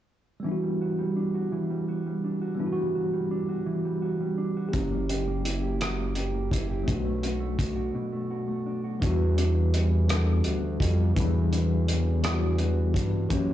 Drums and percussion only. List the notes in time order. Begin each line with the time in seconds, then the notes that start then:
4.73 kick, closed hi-hat
5.09 closed hi-hat
5.45 closed hi-hat
5.81 cross-stick, closed hi-hat
6.15 closed hi-hat
6.51 kick, closed hi-hat
6.88 kick, closed hi-hat
7.23 closed hi-hat
7.59 kick, closed hi-hat
9.02 kick, closed hi-hat
9.38 closed hi-hat
9.74 closed hi-hat
10.09 cross-stick, closed hi-hat
10.44 closed hi-hat
10.80 kick, closed hi-hat
11.16 kick, closed hi-hat
11.53 closed hi-hat
11.88 closed hi-hat
12.24 cross-stick, closed hi-hat
12.58 closed hi-hat
12.94 kick, closed hi-hat
13.30 kick, closed hi-hat